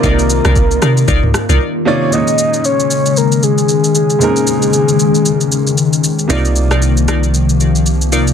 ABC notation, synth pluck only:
X:1
M:4/4
L:1/16
Q:"Swing 16ths" 1/4=115
K:Bbm
V:1 name="Synth pluck"
[EFB=d]3 [EFBd] z2 [EFBd] z [EFBd] z2 [EFBd] z4 | z16 | z16 | [EFB=d]3 [EFBd] z2 [EFBd] z6 z [EFBd] z |]